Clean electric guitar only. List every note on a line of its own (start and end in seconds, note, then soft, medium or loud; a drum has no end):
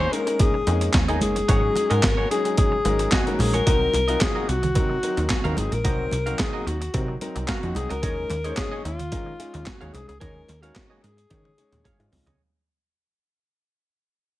0.00 0.11 D#4 medium
0.00 0.12 G#4 medium
0.00 0.12 C#5 medium
0.12 muted clean electric guitar stroke soft
0.27 muted clean electric guitar stroke soft
0.40 muted clean electric guitar stroke soft
0.54 muted clean electric guitar stroke soft
0.81 muted clean electric guitar stroke soft
0.94 muted clean electric guitar stroke soft
1.08 1.20 D#4 medium
1.08 1.21 G#4 medium
1.08 1.22 D#5 medium
1.36 muted clean electric guitar stroke soft
1.48 1.68 F#4 loud
1.48 1.62 G#4 loud
1.48 1.62 C#5 loud
1.63 muted clean electric guitar stroke medium
1.76 muted clean electric guitar stroke soft
1.90 2.02 F#4 medium
1.90 2.02 G#4 medium
1.90 2.04 D#5 medium
2.17 2.29 F#4 medium
2.17 2.30 G#4 medium
2.17 2.30 C#5 medium
2.30 muted clean electric guitar stroke soft
2.45 muted clean electric guitar stroke soft
2.57 muted clean electric guitar stroke soft
2.72 muted clean electric guitar stroke medium
2.99 muted clean electric guitar stroke soft
3.12 3.31 F#4 medium
3.12 3.26 G#4 medium
3.12 3.26 D#5 medium
3.26 muted clean electric guitar stroke soft
3.39 muted clean electric guitar stroke medium
3.53 3.65 F#4 medium
3.53 3.66 G#4 medium
3.53 3.67 C#5 medium
3.66 3.86 F#4 medium
3.66 3.81 A#4 medium
3.66 3.80 D#5 loud
3.81 muted clean electric guitar stroke medium
3.93 muted clean electric guitar stroke soft
4.08 4.19 F#4 medium
4.08 4.20 A#4 medium
4.08 4.20 D#5 medium
4.35 4.47 F#4 medium
4.35 4.47 A#4 medium
4.35 4.48 D#5 medium
4.48 muted clean electric guitar stroke soft
4.63 muted clean electric guitar stroke soft
4.75 muted clean electric guitar stroke soft
4.89 muted clean electric guitar stroke soft
5.17 muted clean electric guitar stroke soft
5.30 muted clean electric guitar stroke soft
5.44 5.56 F#4 medium
5.44 5.56 A#4 medium
5.44 5.58 F5 medium
5.57 muted clean electric guitar stroke soft
5.72 muted clean electric guitar stroke soft
5.84 6.04 F#4 medium
5.84 5.99 A#4 medium
5.84 5.98 D#5 medium
5.99 muted clean electric guitar stroke soft
6.12 muted clean electric guitar stroke soft
6.26 6.38 F#4 medium
6.26 6.38 A#4 medium
6.26 6.39 F5 medium
6.53 6.65 F#4 medium
6.53 6.66 A#4 medium
6.53 6.66 D#5 medium
6.66 muted clean electric guitar stroke soft
6.81 muted clean electric guitar stroke medium
6.94 muted clean electric guitar stroke soft
7.08 muted clean electric guitar stroke soft
7.36 muted clean electric guitar stroke soft
7.48 7.68 F#4 medium
7.48 7.62 A#4 medium
7.48 7.62 F5 medium
7.63 muted clean electric guitar stroke medium
7.75 muted clean electric guitar stroke soft
7.89 8.02 F#4 medium
7.89 8.03 A#4 medium
7.89 8.03 D#5 medium
8.03 8.22 G#4 medium
8.03 8.17 C#5 medium
8.03 8.16 D#5 medium
8.17 muted clean electric guitar stroke soft
8.30 muted clean electric guitar stroke soft
8.44 8.56 G#4 medium
8.44 8.57 C#5 medium
8.44 8.57 D#5 medium
8.71 8.83 G#4 medium
8.71 8.84 C#5 medium
8.71 8.84 D#5 medium
8.85 muted clean electric guitar stroke soft
8.99 muted clean electric guitar stroke soft
9.12 muted clean electric guitar stroke soft
9.26 muted clean electric guitar stroke soft
9.54 muted clean electric guitar stroke soft
9.67 muted clean electric guitar stroke soft
9.81 9.92 G#4 medium
9.81 9.93 C#5 medium
9.81 9.94 F5 medium
9.94 muted clean electric guitar stroke soft
10.08 muted clean electric guitar stroke soft
10.21 10.40 G#4 medium
10.21 10.35 C#5 medium
10.21 10.34 D#5 medium
10.35 muted clean electric guitar stroke soft
10.48 muted clean electric guitar stroke soft
10.63 10.74 G#4 soft
10.63 10.75 C#5 medium
10.63 10.76 F5 medium
10.90 11.02 G#4 medium
10.90 11.02 C#5 medium
10.90 11.03 D#5 medium
11.03 muted clean electric guitar stroke soft
11.17 muted clean electric guitar stroke soft
11.30 muted clean electric guitar stroke soft
11.44 muted clean electric guitar stroke soft
11.72 muted clean electric guitar stroke soft
11.84 12.04 G#4 medium
11.84 11.99 C#5 medium
11.84 11.99 F5 medium
11.99 muted clean electric guitar stroke soft
12.12 muted clean electric guitar stroke soft
12.26 12.41 G#4 medium
12.26 12.41 C#5 medium
12.26 12.40 D#5 medium